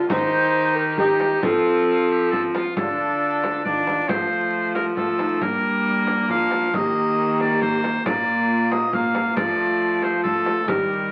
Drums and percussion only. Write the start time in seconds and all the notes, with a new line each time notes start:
0.10 frame drum
0.98 frame drum
1.20 frame drum
1.43 frame drum
2.33 frame drum
2.55 frame drum
2.77 frame drum
3.44 frame drum
3.65 frame drum
3.87 frame drum
4.09 frame drum
4.75 frame drum
4.97 frame drum
5.19 frame drum
5.41 frame drum
6.07 frame drum
6.29 frame drum
6.51 frame drum
6.74 frame drum
7.40 frame drum
7.62 frame drum
7.84 frame drum
8.06 frame drum
8.72 frame drum
8.93 frame drum
9.15 frame drum
9.37 frame drum
10.02 frame drum
10.25 frame drum
10.46 frame drum
10.68 frame drum